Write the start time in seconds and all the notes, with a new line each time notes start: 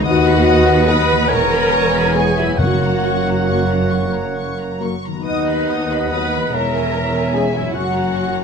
Already playing: D#3 B3
0.00 F#4 B4
0.04 D#2 B3 F#4 D#5 F#5 D#6
0.26 B5
0.46 D#6
0.66 B5
0.87 F#3 B3 B4 B5 D#6
1.09 E3 B5
1.16 B3
1.21 G#4
1.25 C#5 G#5 A#5
1.29 E1 E2 B3 A#4 A#5 C#6
1.51 B5
1.73 C#6
1.93 B5
2.14 G#3 B3 G#4 G#5 C#6
2.37 F#2 E4 E5 B5
2.46 A#3
2.50 F#4
2.55 F#2 C#5 F#5
2.59 F#1 A#3 F#4 F#5 C#6
2.82 A#5
3.04 C#6
3.27 A#5
3.47 F#3 A#3 C#6
3.69 A#5
3.90 C#6
4.13 A#5
4.36 C#6
4.59 A#5
4.80 F#3 A#3 C#6
5.04 D#3 A#5
5.11 B3
5.16 F#4
5.20 B3 B4 D#5
5.24 D#2 D#4 D#5 F#5 D#6
5.49 B5
5.69 D#6
5.91 B5
6.11 F#3 B3 B4 B5 D#6
6.34 E3 B5
6.41 G#3
6.45 G#4
6.50 C#5 A#5
6.54 E1 E2 C#4 A#4 C#5 E5 A#5
6.75 G#5
6.95 E5
7.15 G#5
7.34 G#3 C#4 G#4 E5 G#5
7.53 F#2 E4 E5 G#5
7.61 A#3
7.66 F#4
7.70 F#1 C#4 F#4 C#5 F#5
7.75 F#2 F#5 C#6
7.94 A#5
8.14 C#6
8.33 A#5